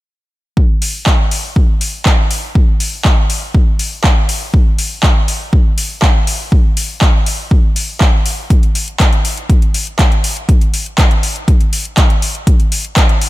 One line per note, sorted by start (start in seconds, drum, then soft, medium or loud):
0.57 kick loud
0.82 open hi-hat loud
1.06 kick loud
1.06 clap loud
1.31 open hi-hat loud
1.56 kick loud
1.81 open hi-hat loud
2.06 kick loud
2.06 clap loud
2.31 open hi-hat loud
2.55 kick loud
2.80 open hi-hat loud
3.05 kick loud
3.05 clap loud
3.30 open hi-hat loud
3.55 kick loud
3.79 open hi-hat loud
4.04 kick loud
4.04 clap loud
4.29 open hi-hat loud
4.54 kick loud
4.79 open hi-hat loud
5.03 kick loud
5.03 clap loud
5.28 open hi-hat loud
5.53 kick loud
5.78 open hi-hat loud
6.02 kick loud
6.02 clap loud
6.27 open hi-hat loud
6.52 kick loud
6.77 open hi-hat loud
7.01 kick loud
7.01 clap loud
7.26 open hi-hat loud
7.51 kick loud
7.76 open hi-hat loud
8.01 kick loud
8.01 clap loud
8.26 open hi-hat loud
8.50 kick loud
8.50 closed hi-hat medium
8.63 closed hi-hat soft
8.75 open hi-hat loud
8.88 closed hi-hat soft
9.00 kick loud
9.00 clap loud
9.00 closed hi-hat medium
9.13 closed hi-hat soft
9.25 open hi-hat loud
9.37 closed hi-hat soft
9.50 kick loud
9.50 closed hi-hat medium
9.62 closed hi-hat soft
9.74 open hi-hat loud
9.87 closed hi-hat soft
9.99 kick loud
9.99 clap loud
9.99 closed hi-hat medium
10.12 closed hi-hat soft
10.24 open hi-hat loud
10.37 closed hi-hat soft
10.49 kick loud
10.49 closed hi-hat medium
10.61 closed hi-hat soft
10.74 open hi-hat loud
10.86 closed hi-hat soft
10.98 kick loud
10.98 clap loud
10.98 closed hi-hat medium
11.11 closed hi-hat soft
11.23 open hi-hat loud
11.36 closed hi-hat soft
11.48 kick loud
11.48 closed hi-hat medium
11.61 closed hi-hat soft
11.73 open hi-hat loud
11.85 closed hi-hat soft
11.97 kick loud
11.97 clap loud
11.97 closed hi-hat medium
12.10 closed hi-hat soft
12.22 open hi-hat loud
12.35 closed hi-hat soft
12.47 kick loud
12.47 closed hi-hat medium
12.60 closed hi-hat soft
12.72 open hi-hat loud
12.84 closed hi-hat soft
12.96 kick loud
12.96 clap loud
12.96 closed hi-hat loud
13.09 closed hi-hat soft
13.21 open hi-hat loud